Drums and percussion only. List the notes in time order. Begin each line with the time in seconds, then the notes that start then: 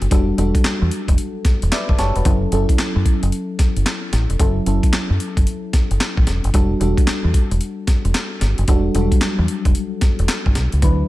0.02 closed hi-hat
0.11 kick, closed hi-hat
0.38 closed hi-hat
0.55 kick, closed hi-hat
0.64 snare, clap, closed hi-hat
0.91 closed hi-hat
1.08 kick, closed hi-hat
1.18 closed hi-hat
1.45 kick, snare, closed hi-hat
1.62 closed hi-hat
1.72 snare, clap, closed hi-hat
1.89 kick
1.99 snare, closed hi-hat
2.16 closed hi-hat
2.25 kick, closed hi-hat
2.52 closed hi-hat
2.69 kick, closed hi-hat
2.78 snare, clap, closed hi-hat
3.06 kick, closed hi-hat
3.23 closed hi-hat
3.32 closed hi-hat
3.59 kick, snare, closed hi-hat
3.76 closed hi-hat
3.86 snare, clap, closed hi-hat
4.13 snare, closed hi-hat
4.30 closed hi-hat
4.40 kick, closed hi-hat
4.66 closed hi-hat
4.83 kick, closed hi-hat
4.93 snare, clap, closed hi-hat
5.20 closed hi-hat
5.37 kick, closed hi-hat
5.47 closed hi-hat
5.73 kick, snare, closed hi-hat
5.91 closed hi-hat
6.00 snare, clap, closed hi-hat
6.17 kick
6.27 snare, closed hi-hat
6.44 closed hi-hat
6.54 kick, closed hi-hat
6.81 closed hi-hat
6.97 kick, closed hi-hat
7.07 snare, clap, closed hi-hat
7.34 kick, closed hi-hat
7.51 closed hi-hat
7.61 closed hi-hat
7.87 kick, snare, closed hi-hat
8.05 closed hi-hat
8.14 snare, clap, closed hi-hat
8.41 snare, closed hi-hat
8.58 closed hi-hat
8.68 kick, closed hi-hat
8.95 closed hi-hat
9.12 kick, closed hi-hat
9.21 snare, clap, closed hi-hat
9.48 closed hi-hat
9.65 kick, closed hi-hat
9.75 closed hi-hat
10.01 kick, snare, closed hi-hat
10.19 closed hi-hat
10.28 snare, clap, closed hi-hat
10.46 kick
10.55 snare, closed hi-hat
10.72 closed hi-hat
10.82 kick, closed hi-hat